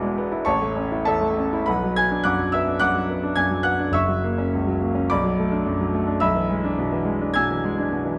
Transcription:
Already playing: E1 E2 B2 G#3 B3 E4 D5 B5 D6
0.02 G#3
0.18 B3
0.32 E4
0.45 A1 C#5 A5 C#6
0.62 A3
0.77 C#4
0.92 E4
1.05 E2 A4 E5 A5
1.21 A3
1.38 C#4
1.53 E4
1.66 B1 B4 F#5 B5
1.83 F#3
1.96 B3 G#5 G#6
2.11 D4
2.24 F#2 F#5 D6 F#6
2.39 F#3
2.52 B3 E5 E6
2.67 D4
2.79 F#2 F#5 D6 F#6
2.95 F#3
3.10 B3
3.23 D4
3.36 F#2 G#5 G#6
3.51 F#3
3.63 B3 F#5 F#6
3.79 D4
3.90 F#1 E5 C#6 E6
4.08 F#3
4.24 A#3
4.38 C#4
4.53 C#2
4.67 F#3
4.81 A#3
4.95 C#4
5.10 B1 D5 B5 D6
5.24 F#3
5.39 A3
5.52 D4
5.66 F#2
5.80 F#3
5.94 A3
6.07 D4
6.20 B1 E5 B5 E6
6.35 E3
6.50 G#3
6.64 D4
6.78 B2
6.92 E3
7.05 G#3
7.21 D4
7.34 B2 G#5 E6 G#6
7.51 E3
7.64 G#3
7.78 D4
7.92 B2
8.05 E3

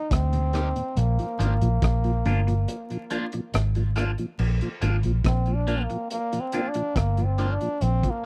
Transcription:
Already playing: D#4
0.11 D2 C4, kick, cross-stick, closed hi-hat
0.32 D#2 A#2, closed hi-hat
0.53 G3 A#3 D#4 G4, cross-stick, closed hi-hat
0.76 D#2 A#2, closed hi-hat
0.96 A#1 A#3, closed hi-hat
1.19 A#2 F3, closed hi-hat
1.39 G#1 F3 A#3 D4 F4, closed hi-hat
1.61 A#1 A#2 F3, closed hi-hat
1.82 A#1, kick, cross-stick, closed hi-hat
2.04 A#2 F3, closed hi-hat
2.25 G1 F3 A#3 D4 F4, closed hi-hat
2.47 A#2 F3, muted clean electric guitar stroke, closed hi-hat
2.68 closed hi-hat
2.90 A#2 F3, closed hi-hat
3.10 F3 A#3 D4 F4, closed hi-hat
3.32 A#2 F3, muted clean electric guitar stroke, closed hi-hat
3.54 G#1, cross-stick, closed hi-hat
3.75 A#2 F3, closed hi-hat
3.96 F3 A#3 D4 F4, cross-stick, closed hi-hat
4.18 A#2 F3, closed hi-hat
4.39 A#1, crash
4.61 A#2 F3, closed hi-hat
4.81 G#1 F3 A#3 D4 F4, closed hi-hat
5.03 A#1 A#2 F3, closed hi-hat
5.25 A#1 C4, kick, cross-stick, closed hi-hat
5.46 A#2 F3, closed hi-hat
5.55 D4
5.67 F3 A#3 D4 F4, closed hi-hat
5.82 A#3
5.90 A#2 F3, muted clean electric guitar stroke, closed hi-hat
6.10 A#3, closed hi-hat
6.32 A#2 F3, closed hi-hat
6.40 C4
6.52 F3 A#3 D4 F4, closed hi-hat
6.68 D4
6.74 A#2 F3, muted clean electric guitar stroke, closed hi-hat
6.96 G1 A#3, kick, cross-stick, closed hi-hat
7.17 A#2 F3, closed hi-hat
7.25 C4
7.38 F3 A#3 D4 F4, closed hi-hat
7.53 D4
7.61 A#2 F3, closed hi-hat
7.81 A#1 C4, closed hi-hat
8.03 A#2 F3, kick, closed hi-hat
8.10 A#3

